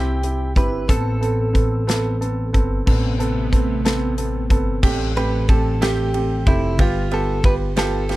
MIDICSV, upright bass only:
0, 0, Header, 1, 2, 480
1, 0, Start_track
1, 0, Key_signature, 0, "minor"
1, 0, Tempo, 661521
1, 640, Time_signature, 6, 3, 24, 8
1, 2083, Tempo, 652174
1, 5979, End_track
2, 0, Start_track
2, 0, Title_t, "Upright bass"
2, 0, Program_c, 0, 32
2, 0, Note_on_c, 0, 36, 93
2, 375, Note_off_c, 0, 36, 0
2, 408, Note_on_c, 0, 31, 81
2, 629, Note_off_c, 0, 31, 0
2, 647, Note_on_c, 0, 33, 99
2, 1819, Note_off_c, 0, 33, 0
2, 1845, Note_on_c, 0, 31, 82
2, 2069, Note_off_c, 0, 31, 0
2, 2084, Note_on_c, 0, 33, 99
2, 3285, Note_off_c, 0, 33, 0
2, 3285, Note_on_c, 0, 31, 81
2, 3513, Note_off_c, 0, 31, 0
2, 3528, Note_on_c, 0, 33, 113
2, 4702, Note_off_c, 0, 33, 0
2, 4731, Note_on_c, 0, 29, 93
2, 4968, Note_off_c, 0, 29, 0
2, 4968, Note_on_c, 0, 31, 106
2, 5979, Note_off_c, 0, 31, 0
2, 5979, End_track
0, 0, End_of_file